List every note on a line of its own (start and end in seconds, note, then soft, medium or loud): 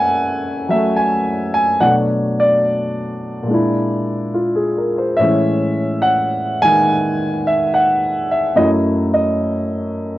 0.00 1.78 F#2 medium
0.00 1.80 E3 medium
0.00 1.82 G#3 soft
0.00 0.70 A3 medium
0.00 0.71 E5 medium
0.00 1.80 F#5 medium
0.00 0.66 G#5 loud
0.69 1.79 F#3 soft
0.69 1.79 A3 soft
0.69 0.76 E5 medium
0.97 1.50 G#5 medium
1.54 1.79 G#5 medium
1.80 3.49 B2 soft
1.80 3.49 F#3 soft
1.80 3.49 A3 soft
1.80 3.49 D4 medium
1.80 1.93 F#5 medium
2.40 4.89 D5 medium
3.43 5.16 A#2 soft
3.47 5.18 G#3 soft
3.47 5.20 D4 soft
3.54 5.21 E4 medium
4.34 4.75 F4 soft
4.56 4.92 G#4 soft
4.78 5.03 A#4 soft
4.98 5.28 C5 soft
5.17 8.57 A2 soft
5.17 8.57 E3 soft
5.17 6.60 G#3 soft
5.17 8.58 C#4 medium
5.17 6.06 E5 medium
6.02 6.58 F#5 medium
6.62 8.58 D#3 soft
6.62 8.56 G#3 soft
6.62 7.43 G#5 loud
7.47 7.74 E5 medium
7.74 8.27 F#5 medium
8.31 8.58 E5 medium
8.56 10.18 F#2 soft
8.56 10.18 F#3 soft
8.56 10.18 A3 soft
8.56 10.18 E4 medium
8.56 8.69 D#5 medium
9.14 10.18 D#5 medium